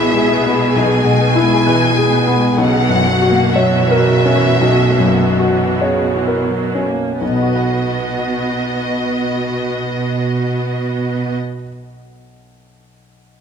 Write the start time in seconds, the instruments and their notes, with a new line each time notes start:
Already playing: grand piano B1 B2 E4 B4, cello section B2, viola section G#4, violin section E5
0.10 viola section G#3
0.17 grand piano G#4
0.31 viola section B3
0.46 grand piano B3
0.53 viola section G#3
0.75 grand piano B1, viola section E3, violin section G#5
0.98 viola section G#3
1.04 grand piano B2
1.20 viola section B3
1.36 grand piano E4
1.43 viola section G#3
1.66 viola section E3, grand piano B4
1.90 viola section G#3
1.97 grand piano G#4
2.12 viola section B3
2.27 grand piano B3
2.36 viola section G#3
2.58 grand piano B1, cello section B2, viola section C#3 F#4, violin section F#5
2.82 viola section E3
2.89 grand piano F#2
3.06 viola section F#3
3.22 grand piano F#4
3.30 viola section A#3
3.55 viola section F#3, grand piano C#5, violin section E5
3.81 viola section E3
3.91 grand piano A#4
4.08 viola section C#3
4.25 grand piano C#4
4.34 viola section E3
4.61 grand piano B1, viola section F#3
4.90 viola section A#3
5.00 grand piano F#2
5.18 viola section F#3
5.39 grand piano F#4
5.50 viola section E3
5.81 viola section C#3, grand piano C#5
6.14 viola section E3
6.27 grand piano A#4
6.50 viola section F#3
6.75 grand piano C#4
6.86 viola section A#3
7.20 grand piano B1, cello section B2, viola section B3 F#4, violin section D#5
7.29 grand piano B2
7.35 grand piano B3
7.42 grand piano F#4
7.49 grand piano B4
7.56 grand piano F#5